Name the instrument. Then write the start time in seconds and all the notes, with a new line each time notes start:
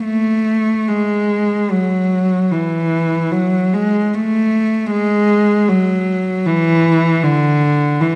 cello
0.04 A3
0.88 G#3
1.71 F#3
2.51 E3
3.31 F#3
3.74 G#3
4.13 A3
4.91 G#3
5.69 F#3
6.46 E3
7.23 D3
8.00 E3